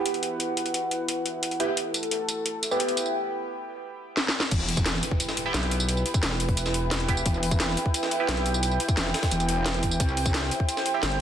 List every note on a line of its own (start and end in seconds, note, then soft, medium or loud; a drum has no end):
0.00 1.58 B3 medium
0.00 1.58 E4 medium
0.00 3.10 E4 medium
0.00 1.58 G4 medium
0.00 1.74 B4 medium
0.00 3.10 F#5 medium
0.06 closed hi-hat loud
0.14 closed hi-hat soft
0.23 closed hi-hat medium
0.40 closed hi-hat medium
0.57 closed hi-hat medium
0.66 closed hi-hat soft
0.74 closed hi-hat loud
0.91 closed hi-hat medium
1.08 closed hi-hat medium
1.26 closed hi-hat medium
1.43 closed hi-hat loud
1.51 closed hi-hat soft
1.60 1.65 B3 loud
1.60 1.65 E4 medium
1.60 1.65 G4 loud
1.60 closed hi-hat medium
1.77 3.13 A4 medium
1.77 closed hi-hat loud
1.94 closed hi-hat medium
1.94 tambourine medium
2.03 closed hi-hat soft
2.11 closed hi-hat medium
2.29 closed hi-hat medium
2.29 tambourine medium
2.46 closed hi-hat medium
2.63 closed hi-hat medium
2.63 tambourine medium
2.71 4.32 B3 medium
2.71 4.32 E4 medium
2.71 4.32 G4 medium
2.71 tambourine soft
2.80 closed hi-hat medium
2.88 closed hi-hat soft
2.97 closed hi-hat medium
2.97 tambourine medium
3.06 tambourine soft
4.17 snare medium
4.29 snare medium
4.40 snare loud
4.51 5.01 E1 medium
4.51 9.96 E4 medium
4.51 9.96 B4 medium
4.51 11.21 G5 medium
4.51 kick loud
4.51 closed hi-hat loud
4.51 closed hi-hat medium
4.51 crash loud
4.51 tambourine medium
4.51 impact medium
4.60 tambourine soft
4.69 closed hi-hat medium
4.69 open hi-hat medium
4.77 kick loud
4.77 closed hi-hat soft
4.77 tambourine medium
4.86 snare loud
4.86 closed hi-hat loud
4.86 closed hi-hat medium
4.86 tambourine medium
4.94 snare soft
5.03 closed hi-hat medium
5.03 tambourine soft
5.11 kick medium
5.20 closed hi-hat medium
5.20 closed hi-hat loud
5.20 tambourine medium
5.29 snare medium
5.29 tambourine soft
5.37 closed hi-hat medium
5.46 7.06 B3 medium
5.46 7.06 E4 medium
5.46 7.06 G4 medium
5.54 6.04 B1 medium
5.54 snare loud
5.54 closed hi-hat medium
5.54 tambourine medium
5.63 closed hi-hat soft
5.71 closed hi-hat medium
5.71 tambourine soft
5.80 tambourine medium
5.89 closed hi-hat medium
5.89 tambourine medium
5.97 tambourine soft
6.06 closed hi-hat medium
6.14 kick loud
6.14 closed hi-hat soft
6.14 tambourine medium
6.23 7.24 E1 loud
6.23 snare loud
6.23 closed hi-hat medium
6.23 closed hi-hat loud
6.23 tambourine medium
6.31 snare soft
6.40 closed hi-hat medium
6.40 tambourine soft
6.49 kick medium
6.49 closed hi-hat soft
6.57 closed hi-hat loud
6.57 closed hi-hat medium
6.57 tambourine medium
6.66 snare medium
6.66 tambourine soft
6.74 closed hi-hat medium
6.91 snare loud
6.91 closed hi-hat loud
6.91 closed hi-hat medium
6.91 tambourine soft
7.00 closed hi-hat soft
7.08 7.14 B3 loud
7.08 7.14 E4 loud
7.08 7.14 G4 loud
7.08 kick medium
7.08 closed hi-hat medium
7.08 tambourine soft
7.17 tambourine medium
7.26 7.76 E1 loud
7.26 kick loud
7.26 closed hi-hat loud
7.26 tambourine soft
7.34 tambourine soft
7.43 closed hi-hat medium
7.43 open hi-hat medium
7.51 kick loud
7.51 closed hi-hat soft
7.51 tambourine medium
7.60 snare loud
7.60 closed hi-hat loud
7.60 closed hi-hat medium
7.60 tambourine soft
7.69 snare soft
7.77 closed hi-hat medium
7.77 tambourine soft
7.86 kick medium
7.94 closed hi-hat loud
7.94 closed hi-hat medium
7.94 tambourine medium
8.03 snare medium
8.03 tambourine soft
8.11 closed hi-hat medium
8.20 9.81 B3 medium
8.20 9.81 E4 medium
8.20 9.81 G4 medium
8.29 8.79 B1 medium
8.29 snare loud
8.29 closed hi-hat medium
8.29 tambourine soft
8.37 closed hi-hat soft
8.46 closed hi-hat medium
8.46 tambourine soft
8.54 tambourine medium
8.63 closed hi-hat medium
8.63 tambourine soft
8.71 tambourine soft
8.80 closed hi-hat medium
8.89 kick loud
8.89 closed hi-hat soft
8.89 tambourine medium
8.97 9.13 E1 loud
8.97 snare loud
8.97 closed hi-hat medium
8.97 tambourine soft
9.06 snare soft
9.14 snare loud
9.14 closed hi-hat medium
9.14 tambourine soft
9.23 kick medium
9.23 snare loud
9.23 closed hi-hat medium
9.31 9.99 E1 loud
9.31 closed hi-hat medium
9.31 tambourine soft
9.40 closed hi-hat soft
9.40 tambourine soft
9.49 closed hi-hat medium
9.66 snare loud
9.66 closed hi-hat medium
9.66 tambourine soft
9.74 closed hi-hat soft
9.83 kick medium
9.83 closed hi-hat medium
9.83 tambourine soft
9.91 tambourine medium
10.00 10.50 C2 medium
10.00 11.21 E4 medium
10.00 11.21 C5 medium
10.00 kick loud
10.00 closed hi-hat medium
10.00 tambourine soft
10.09 tambourine soft
10.17 closed hi-hat medium
10.17 open hi-hat medium
10.26 kick loud
10.26 closed hi-hat soft
10.26 tambourine medium
10.34 snare loud
10.34 closed hi-hat medium
10.34 tambourine soft
10.43 snare soft
10.51 closed hi-hat medium
10.51 tambourine soft
10.60 kick medium
10.69 closed hi-hat medium
10.69 tambourine soft
10.77 snare medium
10.77 tambourine soft
10.86 closed hi-hat medium
10.94 11.21 C4 medium
10.94 11.21 E4 medium
10.94 11.21 G4 medium
11.03 11.21 G1 medium
11.03 snare loud
11.03 closed hi-hat medium
11.03 tambourine soft
11.11 closed hi-hat soft